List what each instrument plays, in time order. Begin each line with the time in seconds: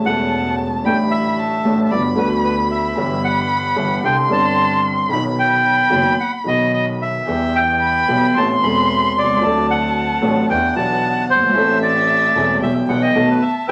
Already playing: violin A5
0.03 double bass E1, upright piano E1 E2 C#3 G3 A3 E4, bandoneon F#5
0.83 double bass A1, upright piano A1 A2 D3 G3 A3, bandoneon G5, violin B5
0.88 upright piano G4
1.11 bandoneon E5
1.38 violin A5
1.65 upright piano A1 A2 D3 G3 A3 G4, double bass A1
1.85 bandoneon E5
1.91 double bass G1, upright piano G1 G2 D3 G3 B3 F#4, bandoneon D5, violin B5
2.15 upright piano D2 D3 G3 B3, double bass D2, bandoneon B4
2.19 upright piano F#4
2.44 bandoneon B4
2.71 bandoneon E5
2.95 double bass G1, upright piano G1 G2 E3 G3 B3 G4, violin B5
3.24 bandoneon F#5
3.76 upright piano G1 G2 E3 G3 B3 G4, double bass G1
4.03 upright piano C2 C3 D3 G3 C4 G4, double bass C2, bandoneon G5, violin C6
4.28 upright piano G1 G2 D3 G3 C4 G4, double bass G1
4.33 bandoneon A5
5.09 double bass B1, upright piano B1 B2 D#3 F#3 B3, violin B5, bandoneon B5
5.13 upright piano D#4
5.39 bandoneon G5
5.90 upright piano F#1 F#2 D#3 F#3 B3 F#4, double bass F#1
6.20 bandoneon F#5
6.44 double bass B1, upright piano B1 B2 D#3 F#3 B3, bandoneon D#5
6.48 upright piano F#4
6.74 bandoneon D#5
7.02 bandoneon E5
7.27 double bass E2, upright piano E2 E3 G3 B3 G4, violin G5
7.55 bandoneon G5
7.82 violin B5
8.08 double bass B1, upright piano B1 B2 E3 G3 B3 G4
8.34 double bass A1, upright piano A1 A2 E3 B3 C4 A4, bandoneon A5, violin C6
8.62 double bass E1, upright piano E1 E2 E3 B3 C4 A4, bandoneon B5
9.15 double bass C2, bandoneon D5
9.23 upright piano B1
9.30 upright piano C2
9.37 upright piano C#2
9.41 double bass D2, upright piano D2 D3 F#3 C4 D4 A4, violin A5
9.70 bandoneon F#5
10.22 double bass A1, upright piano A1 A2 F#3 C4 D4 A4
10.49 double bass E2, upright piano E2 E3 B3 D4 G4, violin F#5, bandoneon G5
10.74 double bass B1, upright piano B1 B2 E3 B3 D4 G4, bandoneon A5
11.29 double bass G1, bandoneon C5
11.36 upright piano F#1
11.43 upright piano G1
11.49 upright piano G#1
11.54 double bass A1, upright piano A1 A2 E3 A3 C4 A4, violin E5
11.82 bandoneon D5
12.34 double bass E1, upright piano E1 E2 E3 A3 C4 A4
12.60 double bass B1, upright piano B1 B2 E3 G3 B3 G4, bandoneon E5, violin G5
12.88 double bass B1, upright piano B1 B2 E3 G3 B3 G4, bandoneon F#5
13.02 bandoneon D#5
13.15 double bass B1, upright piano B1 B2 D#3 A3 B3 F#4, violin A5
13.30 bandoneon B4
13.42 bandoneon E5
13.68 double bass E2, bandoneon B4 E5 G5